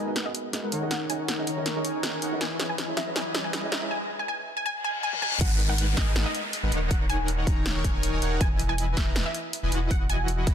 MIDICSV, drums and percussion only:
0, 0, Header, 1, 2, 480
1, 0, Start_track
1, 0, Key_signature, 5, "minor"
1, 0, Tempo, 375000
1, 1162, Time_signature, 4, 2, 24, 8
1, 13495, End_track
2, 0, Start_track
2, 0, Title_t, "Drums"
2, 203, Note_on_c, 9, 38, 51
2, 203, Note_on_c, 9, 42, 72
2, 331, Note_off_c, 9, 38, 0
2, 331, Note_off_c, 9, 42, 0
2, 442, Note_on_c, 9, 42, 65
2, 570, Note_off_c, 9, 42, 0
2, 683, Note_on_c, 9, 38, 51
2, 683, Note_on_c, 9, 42, 83
2, 811, Note_off_c, 9, 38, 0
2, 811, Note_off_c, 9, 42, 0
2, 923, Note_on_c, 9, 42, 62
2, 1051, Note_off_c, 9, 42, 0
2, 1163, Note_on_c, 9, 38, 57
2, 1163, Note_on_c, 9, 42, 80
2, 1291, Note_off_c, 9, 38, 0
2, 1291, Note_off_c, 9, 42, 0
2, 1403, Note_on_c, 9, 42, 64
2, 1531, Note_off_c, 9, 42, 0
2, 1644, Note_on_c, 9, 38, 57
2, 1644, Note_on_c, 9, 42, 76
2, 1772, Note_off_c, 9, 38, 0
2, 1772, Note_off_c, 9, 42, 0
2, 1883, Note_on_c, 9, 42, 66
2, 2011, Note_off_c, 9, 42, 0
2, 2122, Note_on_c, 9, 38, 60
2, 2122, Note_on_c, 9, 42, 74
2, 2250, Note_off_c, 9, 38, 0
2, 2250, Note_off_c, 9, 42, 0
2, 2363, Note_on_c, 9, 42, 65
2, 2491, Note_off_c, 9, 42, 0
2, 2602, Note_on_c, 9, 38, 68
2, 2602, Note_on_c, 9, 42, 75
2, 2730, Note_off_c, 9, 38, 0
2, 2730, Note_off_c, 9, 42, 0
2, 2843, Note_on_c, 9, 42, 68
2, 2971, Note_off_c, 9, 42, 0
2, 3083, Note_on_c, 9, 38, 73
2, 3083, Note_on_c, 9, 42, 77
2, 3211, Note_off_c, 9, 38, 0
2, 3211, Note_off_c, 9, 42, 0
2, 3322, Note_on_c, 9, 38, 72
2, 3322, Note_on_c, 9, 42, 60
2, 3450, Note_off_c, 9, 38, 0
2, 3450, Note_off_c, 9, 42, 0
2, 3563, Note_on_c, 9, 38, 76
2, 3563, Note_on_c, 9, 42, 76
2, 3691, Note_off_c, 9, 38, 0
2, 3691, Note_off_c, 9, 42, 0
2, 3801, Note_on_c, 9, 38, 79
2, 3801, Note_on_c, 9, 42, 63
2, 3929, Note_off_c, 9, 38, 0
2, 3929, Note_off_c, 9, 42, 0
2, 4042, Note_on_c, 9, 38, 82
2, 4042, Note_on_c, 9, 42, 73
2, 4170, Note_off_c, 9, 38, 0
2, 4170, Note_off_c, 9, 42, 0
2, 4282, Note_on_c, 9, 38, 88
2, 4282, Note_on_c, 9, 42, 63
2, 4410, Note_off_c, 9, 38, 0
2, 4410, Note_off_c, 9, 42, 0
2, 4522, Note_on_c, 9, 38, 88
2, 4522, Note_on_c, 9, 42, 76
2, 4650, Note_off_c, 9, 38, 0
2, 4650, Note_off_c, 9, 42, 0
2, 4762, Note_on_c, 9, 38, 91
2, 4762, Note_on_c, 9, 42, 64
2, 4890, Note_off_c, 9, 38, 0
2, 4890, Note_off_c, 9, 42, 0
2, 6567, Note_on_c, 9, 48, 50
2, 6683, Note_on_c, 9, 47, 75
2, 6695, Note_off_c, 9, 48, 0
2, 6807, Note_on_c, 9, 45, 84
2, 6811, Note_off_c, 9, 47, 0
2, 6922, Note_on_c, 9, 36, 119
2, 6923, Note_on_c, 9, 42, 84
2, 6923, Note_on_c, 9, 49, 99
2, 6935, Note_off_c, 9, 45, 0
2, 7050, Note_off_c, 9, 36, 0
2, 7051, Note_off_c, 9, 42, 0
2, 7051, Note_off_c, 9, 49, 0
2, 7163, Note_on_c, 9, 42, 64
2, 7291, Note_off_c, 9, 42, 0
2, 7403, Note_on_c, 9, 42, 83
2, 7531, Note_off_c, 9, 42, 0
2, 7642, Note_on_c, 9, 36, 102
2, 7643, Note_on_c, 9, 38, 61
2, 7643, Note_on_c, 9, 42, 70
2, 7770, Note_off_c, 9, 36, 0
2, 7771, Note_off_c, 9, 38, 0
2, 7771, Note_off_c, 9, 42, 0
2, 7882, Note_on_c, 9, 38, 113
2, 7882, Note_on_c, 9, 42, 78
2, 8010, Note_off_c, 9, 38, 0
2, 8010, Note_off_c, 9, 42, 0
2, 8123, Note_on_c, 9, 42, 65
2, 8251, Note_off_c, 9, 42, 0
2, 8362, Note_on_c, 9, 42, 85
2, 8490, Note_off_c, 9, 42, 0
2, 8602, Note_on_c, 9, 42, 68
2, 8730, Note_off_c, 9, 42, 0
2, 8842, Note_on_c, 9, 36, 127
2, 8842, Note_on_c, 9, 42, 83
2, 8970, Note_off_c, 9, 36, 0
2, 8970, Note_off_c, 9, 42, 0
2, 9082, Note_on_c, 9, 42, 65
2, 9210, Note_off_c, 9, 42, 0
2, 9322, Note_on_c, 9, 42, 79
2, 9450, Note_off_c, 9, 42, 0
2, 9561, Note_on_c, 9, 36, 111
2, 9562, Note_on_c, 9, 42, 68
2, 9689, Note_off_c, 9, 36, 0
2, 9690, Note_off_c, 9, 42, 0
2, 9801, Note_on_c, 9, 38, 120
2, 9801, Note_on_c, 9, 42, 76
2, 9929, Note_off_c, 9, 38, 0
2, 9929, Note_off_c, 9, 42, 0
2, 10041, Note_on_c, 9, 36, 59
2, 10042, Note_on_c, 9, 42, 67
2, 10169, Note_off_c, 9, 36, 0
2, 10170, Note_off_c, 9, 42, 0
2, 10282, Note_on_c, 9, 42, 83
2, 10410, Note_off_c, 9, 42, 0
2, 10522, Note_on_c, 9, 42, 68
2, 10650, Note_off_c, 9, 42, 0
2, 10761, Note_on_c, 9, 36, 127
2, 10761, Note_on_c, 9, 42, 76
2, 10889, Note_off_c, 9, 36, 0
2, 10889, Note_off_c, 9, 42, 0
2, 11001, Note_on_c, 9, 42, 63
2, 11129, Note_off_c, 9, 42, 0
2, 11242, Note_on_c, 9, 42, 79
2, 11370, Note_off_c, 9, 42, 0
2, 11481, Note_on_c, 9, 36, 109
2, 11482, Note_on_c, 9, 38, 66
2, 11482, Note_on_c, 9, 42, 66
2, 11609, Note_off_c, 9, 36, 0
2, 11610, Note_off_c, 9, 38, 0
2, 11610, Note_off_c, 9, 42, 0
2, 11722, Note_on_c, 9, 38, 119
2, 11722, Note_on_c, 9, 42, 73
2, 11850, Note_off_c, 9, 38, 0
2, 11850, Note_off_c, 9, 42, 0
2, 11962, Note_on_c, 9, 42, 65
2, 12090, Note_off_c, 9, 42, 0
2, 12202, Note_on_c, 9, 42, 77
2, 12330, Note_off_c, 9, 42, 0
2, 12442, Note_on_c, 9, 42, 66
2, 12570, Note_off_c, 9, 42, 0
2, 12681, Note_on_c, 9, 36, 125
2, 12682, Note_on_c, 9, 42, 79
2, 12809, Note_off_c, 9, 36, 0
2, 12810, Note_off_c, 9, 42, 0
2, 12922, Note_on_c, 9, 42, 61
2, 13050, Note_off_c, 9, 42, 0
2, 13161, Note_on_c, 9, 42, 78
2, 13289, Note_off_c, 9, 42, 0
2, 13401, Note_on_c, 9, 36, 105
2, 13401, Note_on_c, 9, 42, 65
2, 13495, Note_off_c, 9, 36, 0
2, 13495, Note_off_c, 9, 42, 0
2, 13495, End_track
0, 0, End_of_file